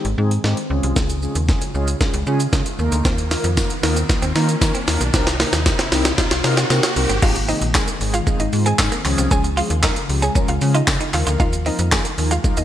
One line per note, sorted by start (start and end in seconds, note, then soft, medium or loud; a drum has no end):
0.00 0.68 D#3 medium
0.00 2.75 G#3 medium
0.00 0.68 C4 medium
0.00 riser medium
0.05 0.15 G#1 loud
0.05 closed hi-hat medium
0.18 0.39 G#2 loud
0.18 0.31 G#3 loud
0.18 0.31 C4 loud
0.18 0.31 D#4 loud
0.18 0.31 G#4 loud
0.31 closed hi-hat medium
0.44 0.54 G#2 loud
0.44 0.57 G#3 medium
0.44 0.57 C4 medium
0.44 0.57 D#4 medium
0.44 0.58 G4 medium
0.44 snare medium
0.57 closed hi-hat medium
0.70 0.81 C#2 loud
0.70 2.77 C#3 medium
0.70 1.12 G#3 medium
0.70 1.12 C#4 medium
0.70 5.10 F4 medium
0.70 1.12 F4 medium
0.70 1.12 G#4 loud
0.83 0.94 C2 medium
0.83 closed hi-hat medium
0.96 1.27 C#2 loud
0.96 kick loud
0.96 snare medium
0.96 shaker medium
1.10 closed hi-hat medium
1.10 shaker medium
1.22 1.36 G#3 medium
1.22 1.36 C#4 medium
1.22 1.36 F4 medium
1.22 1.36 G#4 medium
1.22 shaker medium
1.35 1.56 D#2 medium
1.35 closed hi-hat medium
1.35 shaker medium
1.48 1.62 G#3 medium
1.48 1.62 C#4 medium
1.48 1.62 F4 medium
1.48 1.62 G#4 loud
1.48 kick loud
1.48 snare medium
1.48 shaker medium
1.62 closed hi-hat medium
1.62 shaker medium
1.74 1.95 C#2 loud
1.74 1.88 G#3 loud
1.74 1.88 C#4 loud
1.74 1.88 F4 loud
1.74 1.88 G#4 loud
1.74 shaker medium
1.88 closed hi-hat medium
1.88 shaker medium
2.00 2.14 G#3 medium
2.00 2.14 C#4 medium
2.00 2.14 F4 medium
2.00 2.14 G#4 medium
2.00 kick loud
2.00 snare medium
2.00 shaker medium
2.14 2.24 C#2 loud
2.14 closed hi-hat medium
2.14 shaker medium
2.27 2.47 C#3 loud
2.27 2.40 G#3 loud
2.27 2.40 C#4 loud
2.27 2.40 F4 loud
2.27 2.40 G#4 loud
2.27 shaker medium
2.40 closed hi-hat medium
2.40 shaker medium
2.53 2.63 C#3 loud
2.53 2.66 G#3 medium
2.53 2.66 C#4 medium
2.53 2.66 F4 medium
2.53 2.66 G#4 loud
2.53 kick loud
2.53 snare medium
2.53 shaker medium
2.66 closed hi-hat medium
2.66 shaker medium
2.79 2.89 D#2 loud
2.79 5.11 D#3 medium
2.79 3.21 A#3 medium
2.79 7.18 A#3 medium
2.79 3.21 D#4 medium
2.79 3.21 F4 medium
2.79 3.21 A#4 loud
2.79 shaker medium
2.92 3.02 D2 loud
2.92 closed hi-hat medium
2.92 shaker medium
3.05 3.36 D#2 loud
3.05 3.14 C4 medium
3.05 kick loud
3.05 snare medium
3.05 shaker medium
3.18 closed hi-hat medium
3.18 shaker medium
3.31 3.44 A#3 medium
3.31 3.40 A#3 medium
3.31 3.44 D#4 medium
3.31 3.44 F4 medium
3.31 3.44 A#4 medium
3.31 snare medium
3.31 open hi-hat medium
3.31 shaker medium
3.44 3.65 F2 medium
3.44 muted clean electric guitar stroke soft
3.44 closed hi-hat medium
3.44 shaker medium
3.57 3.70 A#3 medium
3.57 3.70 D#4 medium
3.57 3.71 F4 medium
3.57 3.71 A#4 loud
3.57 muted clean electric guitar stroke soft
3.57 kick loud
3.57 snare medium
3.57 tambourine medium
3.57 shaker medium
3.70 closed hi-hat medium
3.70 shaker medium
3.83 4.04 D#2 loud
3.83 3.96 A#3 loud
3.83 3.92 A#3 medium
3.83 3.97 D#4 loud
3.83 3.97 F4 loud
3.83 3.97 A#4 loud
3.83 snare medium
3.83 open hi-hat medium
3.83 shaker medium
3.96 4.05 C4 medium
3.96 closed hi-hat medium
3.96 shaker medium
4.09 4.23 A#3 medium
4.09 4.23 D#4 medium
4.09 4.23 F4 medium
4.09 4.23 A#4 medium
4.09 muted clean electric guitar stroke soft
4.09 kick loud
4.09 snare medium
4.09 shaker medium
4.22 4.33 D#2 medium
4.22 4.31 C4 medium
4.22 closed hi-hat medium
4.22 shaker medium
4.35 4.56 D#3 loud
4.35 4.49 A#3 loud
4.35 4.49 D#4 loud
4.35 4.44 D#4 medium
4.35 4.49 F4 loud
4.35 4.49 A#4 loud
4.35 snare medium
4.35 open hi-hat medium
4.35 shaker medium
4.49 closed hi-hat medium
4.49 shaker medium
4.61 4.72 D#3 loud
4.61 4.75 A#3 medium
4.61 4.75 D#4 medium
4.61 4.75 F4 medium
4.61 4.75 A#4 loud
4.61 kick loud
4.61 snare medium
4.61 tambourine loud
4.61 shaker medium
4.75 4.83 C4 medium
4.75 closed hi-hat medium
4.75 shaker medium
4.88 4.98 D#2 loud
4.88 5.01 A#3 medium
4.88 5.01 D#4 medium
4.88 5.01 F4 medium
4.88 5.01 A#4 loud
4.88 muted clean electric guitar stroke soft
4.88 snare loud
4.88 open hi-hat medium
4.88 shaker medium
5.01 5.11 B1 medium
5.01 5.09 A#3 medium
5.01 closed hi-hat medium
5.01 shaker medium
5.14 5.45 C2 loud
5.14 7.20 C3 medium
5.14 5.27 C4 loud
5.14 5.22 C4 loud
5.14 5.27 D#4 loud
5.14 7.20 D#4 medium
5.14 5.27 G4 loud
5.14 5.27 A#4 loud
5.14 kick loud
5.14 snare loud
5.14 shaker medium
5.27 muted clean electric guitar stroke soft
5.27 snare loud
5.27 closed hi-hat medium
5.27 shaker medium
5.40 5.48 A#3 medium
5.40 5.53 C4 medium
5.40 5.53 D#4 medium
5.40 5.53 G4 medium
5.40 5.53 A#4 loud
5.40 snare loud
5.40 open hi-hat medium
5.40 shaker medium
5.53 5.73 D#2 medium
5.53 snare loud
5.53 closed hi-hat medium
5.53 shaker medium
5.66 5.79 C4 medium
5.66 5.79 D#4 medium
5.66 5.79 G4 medium
5.66 5.79 A#4 loud
5.66 kick loud
5.66 snare loud
5.66 tambourine medium
5.66 shaker medium
5.79 5.87 C4 medium
5.79 snare loud
5.79 closed hi-hat medium
5.79 shaker medium
5.92 6.13 C2 medium
5.92 6.05 C4 loud
5.92 6.05 D#4 loud
5.92 6.05 G4 loud
5.92 6.05 A#4 loud
5.92 muted clean electric guitar stroke soft
5.92 snare loud
5.92 open hi-hat medium
5.92 shaker medium
6.05 6.14 D#4 medium
6.05 snare loud
6.05 closed hi-hat medium
6.05 shaker medium
6.18 6.31 C4 medium
6.18 6.31 D#4 medium
6.18 6.27 D#4 medium
6.18 6.31 G4 medium
6.18 6.32 A#4 medium
6.18 kick loud
6.18 snare loud
6.18 shaker medium
6.31 6.41 C2 loud
6.31 muted clean electric guitar stroke soft
6.31 snare loud
6.31 closed hi-hat medium
6.31 shaker medium
6.44 6.65 C3 loud
6.44 6.57 C4 loud
6.44 6.57 D#4 loud
6.44 6.58 G4 loud
6.44 6.58 A#4 loud
6.44 snare loud
6.44 open hi-hat medium
6.44 shaker medium
6.57 6.66 C4 medium
6.57 snare loud
6.57 closed hi-hat medium
6.57 shaker medium
6.70 6.81 C3 loud
6.70 6.79 A#3 medium
6.70 6.83 C4 medium
6.70 6.84 D#4 medium
6.70 6.84 G4 medium
6.70 6.84 A#4 loud
6.70 snare loud
6.70 tambourine medium
6.70 shaker medium
6.83 snare loud
6.83 closed hi-hat medium
6.83 shaker medium
6.96 7.07 C2 loud
6.96 7.10 C4 medium
6.96 7.10 D#4 medium
6.96 7.10 G4 medium
6.96 7.10 A#4 loud
6.96 open hi-hat medium
6.96 shaker medium
7.09 7.20 G1 medium
7.09 7.18 C4 medium
7.09 closed hi-hat medium
7.09 shaker medium
7.22 7.53 G#1 loud
7.22 7.36 D#3 loud
7.22 9.03 D#3 medium
7.22 7.36 G#3 medium
7.22 11.10 G#3 medium
7.22 7.31 G#3 loud
7.22 9.03 C4 loud
7.22 7.36 C4 medium
7.22 7.36 D#4 medium
7.22 7.45 F4 medium
7.22 7.36 G#4 loud
7.22 7.44 F5 loud
7.22 kick loud
7.22 crash loud
7.22 shaker medium
7.36 muted clean electric guitar stroke soft
7.36 closed hi-hat medium
7.36 shaker medium
7.48 7.62 D#3 medium
7.48 7.62 G#3 medium
7.48 7.62 C4 medium
7.48 7.57 C4 medium
7.48 7.62 D#4 medium
7.48 7.71 D#4 medium
7.48 7.62 G#4 medium
7.48 7.71 D#5 medium
7.48 open hi-hat medium
7.48 shaker medium
7.62 7.82 A#1 medium
7.62 closed hi-hat medium
7.62 shaker medium
7.74 7.88 D#3 medium
7.74 7.88 G#3 medium
7.74 7.83 A#3 medium
7.74 7.88 C4 medium
7.74 7.88 D#4 medium
7.74 7.86 G#4 medium
7.74 7.88 A#4 medium
7.74 7.86 G#5 medium
7.74 kick loud
7.74 snare loud
7.74 clap loud
7.74 tambourine medium
7.74 shaker medium
7.88 muted clean electric guitar stroke soft
7.88 closed hi-hat medium
7.88 shaker medium
8.00 8.21 G#1 loud
8.00 8.14 D#3 medium
8.00 8.14 G#3 medium
8.00 8.14 C4 medium
8.00 8.14 D#4 medium
8.00 8.14 G#4 medium
8.00 open hi-hat medium
8.00 shaker medium
8.14 8.22 G#3 medium
8.14 8.25 F4 medium
8.14 8.25 F5 medium
8.14 closed hi-hat medium
8.14 shaker medium
8.27 8.40 D#3 loud
8.27 8.40 G#3 medium
8.27 8.35 G#3 medium
8.27 8.40 C4 medium
8.27 8.40 D#4 medium
8.27 8.40 G#4 loud
8.27 kick loud
8.27 shaker medium
8.40 8.50 G#1 loud
8.40 8.51 D#4 medium
8.40 8.51 D#5 medium
8.40 muted clean electric guitar stroke soft
8.40 closed hi-hat medium
8.40 shaker medium
8.53 8.73 G#2 loud
8.53 8.66 D#3 medium
8.53 8.66 G#3 medium
8.53 8.66 C4 medium
8.53 8.66 D#4 medium
8.53 8.66 F4 medium
8.53 open hi-hat medium
8.53 shaker medium
8.66 8.74 C4 medium
8.66 8.88 G#4 medium
8.66 8.88 G#5 medium
8.66 closed hi-hat medium
8.66 shaker medium
8.79 8.89 G#2 loud
8.79 8.92 D#3 medium
8.79 8.92 G#3 medium
8.79 8.92 C4 medium
8.79 8.92 D#4 medium
8.79 8.92 G#4 medium
8.79 kick loud
8.79 snare loud
8.79 clap loud
8.79 tambourine loud
8.79 shaker medium
8.92 9.01 A#3 medium
8.92 closed hi-hat medium
8.92 shaker medium
9.05 9.15 C#2 loud
9.05 11.12 C#3 medium
9.05 9.47 F3 loud
9.05 9.47 G#3 medium
9.05 9.47 C#4 medium
9.05 12.64 F4 medium
9.05 9.47 F4 loud
9.05 9.47 G#4 loud
9.05 muted clean electric guitar stroke soft
9.05 clap medium
9.05 open hi-hat medium
9.05 shaker medium
9.18 9.28 C2 loud
9.18 9.27 C4 medium
9.18 closed hi-hat medium
9.18 shaker medium
9.31 9.62 C#2 loud
9.31 9.40 C#4 medium
9.31 9.54 G#4 medium
9.31 9.53 G#5 loud
9.31 kick loud
9.31 shaker medium
9.44 muted clean electric guitar stroke soft
9.44 closed hi-hat medium
9.44 shaker medium
9.57 9.70 F3 medium
9.57 9.70 G#3 medium
9.57 9.71 C#4 medium
9.57 9.66 F4 medium
9.57 9.71 F4 medium
9.57 9.80 F4 medium
9.57 9.71 G#4 medium
9.57 9.79 F5 medium
9.57 open hi-hat medium
9.57 shaker medium
9.70 9.91 D#2 loud
9.70 closed hi-hat medium
9.70 shaker medium
9.83 9.96 F3 medium
9.83 9.96 G#3 medium
9.83 9.97 C#4 medium
9.83 9.92 D#4 medium
9.83 9.97 F4 medium
9.83 9.97 A#4 medium
9.83 9.95 A#4 medium
9.83 9.94 A#5 medium
9.83 kick loud
9.83 snare loud
9.83 clap loud
9.83 tambourine medium
9.83 shaker medium
9.96 muted clean electric guitar stroke soft
9.96 closed hi-hat medium
9.96 shaker medium
10.09 10.30 C#2 loud
10.09 10.23 F3 medium
10.09 10.23 G#3 medium
10.09 10.23 C#4 medium
10.09 10.23 F4 medium
10.09 10.23 G4 medium
10.09 open hi-hat medium
10.09 shaker medium
10.22 10.31 C#4 medium
10.22 10.34 G#4 medium
10.22 10.33 G#5 medium
10.22 closed hi-hat medium
10.22 shaker medium
10.35 10.49 F3 loud
10.35 10.49 G#3 medium
10.35 10.44 C#4 medium
10.35 10.49 C#4 medium
10.35 10.49 F4 medium
10.35 10.49 A#4 loud
10.35 kick loud
10.35 shaker medium
10.48 10.59 C#2 loud
10.48 10.60 F4 medium
10.48 10.60 F5 medium
10.48 muted clean electric guitar stroke soft
10.48 closed hi-hat medium
10.48 shaker medium
10.61 10.82 C#3 loud
10.61 10.75 F3 medium
10.61 10.75 G#3 medium
10.61 10.75 C#4 medium
10.61 10.75 F4 medium
10.61 10.75 G#4 medium
10.61 open hi-hat medium
10.61 shaker medium
10.75 10.86 D#4 medium
10.75 10.83 F4 medium
10.75 10.86 D#5 medium
10.75 closed hi-hat medium
10.75 shaker medium
10.87 10.98 C#3 loud
10.87 11.01 F3 medium
10.87 11.01 G#3 medium
10.87 11.01 C#4 medium
10.87 11.01 F4 medium
10.87 11.01 G#4 medium
10.87 kick loud
10.87 snare loud
10.87 clap loud
10.87 tambourine loud
10.87 shaker medium
11.01 11.09 D#4 medium
11.01 closed hi-hat medium
11.01 shaker medium
11.13 11.24 D#2 loud
11.13 12.64 D#3 medium
11.13 11.55 F3 medium
11.13 11.55 A#3 medium
11.13 12.64 A#3 medium
11.13 11.55 D#4 medium
11.13 11.56 F4 medium
11.13 11.25 F4 medium
11.13 11.56 A#4 loud
11.13 11.25 F5 medium
11.13 muted clean electric guitar stroke soft
11.13 clap medium
11.13 open hi-hat medium
11.13 shaker medium
11.27 11.37 D2 loud
11.27 11.35 F4 medium
11.27 closed hi-hat medium
11.27 shaker medium
11.40 11.71 D#2 loud
11.40 11.48 D#4 loud
11.40 11.62 F4 medium
11.40 11.62 F5 loud
11.40 kick loud
11.40 shaker medium
11.53 muted clean electric guitar stroke soft
11.53 closed hi-hat medium
11.53 shaker medium
11.66 11.79 F3 medium
11.66 11.79 A#3 medium
11.66 11.74 C4 medium
11.66 11.79 D#4 medium
11.66 11.88 D#4 medium
11.66 11.79 F4 medium
11.66 11.79 A#4 medium
11.66 11.88 D#5 medium
11.66 open hi-hat medium
11.66 shaker medium
11.79 12.00 F2 loud
11.79 closed hi-hat medium
11.79 shaker medium
11.92 12.05 F3 medium
11.92 12.05 A#3 medium
11.92 12.01 A#3 medium
11.92 12.05 D#4 medium
11.92 12.05 F4 medium
11.92 12.04 G#4 medium
11.92 12.05 A#4 medium
11.92 12.03 G#5 medium
11.92 kick loud
11.92 snare loud
11.92 clap loud
11.92 tambourine medium
11.92 shaker medium
12.05 muted clean electric guitar stroke medium
12.05 closed hi-hat medium
12.05 shaker medium
12.18 12.39 D#2 loud
12.18 12.31 F3 medium
12.18 12.31 A#3 medium
12.18 12.31 D#4 medium
12.18 12.31 F4 medium
12.18 12.32 A#4 medium
12.18 open hi-hat medium
12.18 shaker medium
12.31 12.40 G#3 medium
12.31 12.43 F4 medium
12.31 12.42 F5 medium
12.31 closed hi-hat medium
12.31 shaker medium
12.44 12.57 F3 loud
12.44 12.53 G#3 medium
12.44 12.57 A#3 medium
12.44 12.57 D#4 medium
12.44 12.58 F4 medium
12.44 12.58 A#4 loud
12.44 kick loud
12.44 shaker medium
12.57 12.64 D#2 loud
12.57 12.64 D#4 medium
12.57 12.64 D#5 medium
12.57 muted clean electric guitar stroke soft
12.57 closed hi-hat medium
12.57 shaker medium